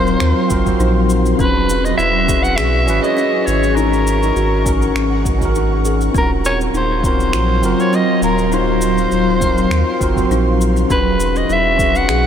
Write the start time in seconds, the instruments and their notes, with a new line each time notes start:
Already playing: sub bass D#1, tine electric piano F#3 C4 F4 F#4 A#4 C5, ambient pad F#3 F5 C6, soprano saxophone C5
0.07 cabasa
0.20 sub bass D#2, kalimba C4, finger snap, cabasa
0.48 sub bass F#1, tine electric piano C4 F4 F#4 A#4, kick, cabasa
0.65 tine electric piano C4 F4 F#4 C5, kick, cabasa
0.80 sub bass A#1, kalimba D#4, cabasa
1.10 cabasa
1.26 cabasa
1.36 sub bass E1, tine electric piano C#4 F#4, kalimba C#4, kick
1.40 ambient pad E4 G#4 C#6, tine electric piano G#4, soprano saxophone B4, cabasa
1.69 cabasa
1.85 soprano saxophone D#5, cabasa
1.98 sub bass E1, kalimba E4, soprano saxophone E5, cabasa
2.27 tine electric piano C#4 F#4 G#4 B4, kick, cabasa
2.43 soprano saxophone F#5, cabasa
2.56 sub bass B1, kalimba G#4, soprano saxophone E5, finger snap, cabasa
2.87 sub bass G#1, tine electric piano C#4 F#4 G#4 B4, cabasa
3.02 tine electric piano C#4 F#4 G#4 C#5, soprano saxophone D#5, cabasa
3.17 kalimba C#4, cabasa
3.46 sub bass G#1, soprano saxophone C#5, cabasa
3.63 cabasa
3.74 tine electric piano C#4 D#4, kalimba D#4, soprano saxophone A#4, ambient pad A#4 F#5, cabasa
3.78 tine electric piano F#4
3.93 cabasa
4.07 cabasa
4.23 cabasa
4.36 sub bass G#1, kalimba F#4, cabasa
4.65 tine electric piano C#4 D#4 F#4 A#4, kick, cabasa
4.82 cabasa
4.95 sub bass G#1, kalimba C#4, finger snap, cabasa
5.25 kick, cabasa
5.38 tine electric piano C#4 D#4, kick
5.42 tine electric piano F#4 A#4, cabasa
5.55 kalimba D#4, cabasa
5.85 kalimba G#4, cabasa
6.01 cabasa
6.11 sub bass D#1, ambient pad F#3 F5 C6, tine electric piano C4 F4, kalimba C4, kick
6.15 tine electric piano F#4 A#4, soprano saxophone A#4, cabasa
6.45 soprano saxophone C#5, cabasa
6.61 cabasa
6.74 sub bass D#1, kalimba D#4, soprano saxophone C5, cabasa
7.02 tine electric piano C4 F4 F#4 A#4, soprano saxophone C5, kick, cabasa
7.20 cabasa
7.33 sub bass A#1, kalimba F4, finger snap, cabasa
7.62 sub bass F#1, tine electric piano C4 F4 F#4 A#4, cabasa
7.79 tine electric piano C4 F4 F#4 C5, soprano saxophone C#5, cabasa
7.93 kalimba C4, soprano saxophone D#5, cabasa
8.22 sub bass D#1, soprano saxophone A#4, cabasa
8.38 cabasa
8.49 tine electric piano C4 F4, kalimba D#4, cabasa
8.53 tine electric piano F#4 A#4, soprano saxophone C5
8.81 cabasa
8.98 cabasa
9.12 sub bass D#1, kalimba F4, cabasa
9.40 tine electric piano F#3 C4 F4 A#4, kick, cabasa
9.58 cabasa
9.71 sub bass D#2, kalimba C4, finger snap, cabasa
9.99 sub bass F#1, tine electric piano C4 F4 F#4 A#4, kick, cabasa
10.15 tine electric piano C4 F4 F#4 C5, kick, cabasa
10.30 sub bass A#1, kalimba D#4, cabasa
10.61 cabasa
10.77 cabasa
10.86 tine electric piano C#4 F#4, ambient pad G#4 C#6
10.90 sub bass E1, kalimba C#4, tine electric piano G#4, soprano saxophone B4, ambient pad E5, kick, cabasa
11.20 cabasa
11.36 soprano saxophone D#5, cabasa
11.49 sub bass E1, kalimba E4, soprano saxophone E5, cabasa
11.77 tine electric piano C#4 F#4 G#4 B4, kick, cabasa
11.95 soprano saxophone F#5, cabasa
12.09 sub bass B1, kalimba G#4, finger snap, cabasa